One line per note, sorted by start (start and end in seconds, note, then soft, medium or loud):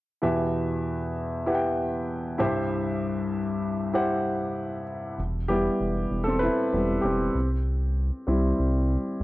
0.22 2.35 E2 medium
0.22 2.35 B2 medium
0.22 1.10 E4 medium
0.22 1.11 G4 medium
0.22 1.11 B4 medium
0.22 1.11 E5 medium
1.46 2.35 E4 medium
1.46 2.35 G4 medium
1.46 2.35 B4 medium
1.46 1.54 F#5 soft
1.54 2.39 G5 medium
2.38 4.83 C2 medium
2.38 4.83 G2 medium
2.38 3.38 E4 medium
2.38 3.38 G4 medium
2.38 3.39 C5 medium
2.38 3.39 E5 medium
3.93 4.82 E4 medium
3.93 4.82 G4 medium
3.93 4.83 C5 medium
3.93 4.83 F#5 medium
5.18 5.69 E1 medium
5.48 5.90 G3 soft
5.48 6.23 B3 soft
5.48 5.91 E4 soft
5.48 6.22 G4 medium
5.80 6.06 E1 medium
6.11 6.49 E1 medium
6.24 6.41 C4 medium
6.24 6.39 A4 medium
6.39 6.72 E4 medium
6.39 6.98 B4 medium
6.72 6.98 E1 medium
6.72 7.01 G3 soft
6.72 7.01 B3 soft
6.72 7.01 E4 soft
7.01 7.29 E1 medium
7.01 7.47 C4 soft
7.01 7.46 G4 medium
7.35 8.11 C2 medium
8.27 8.53 C2 medium
8.27 9.23 G3 soft
8.27 9.23 C4 soft
8.27 9.23 E4 soft
8.59 8.97 C2 medium
9.20 9.23 C2 medium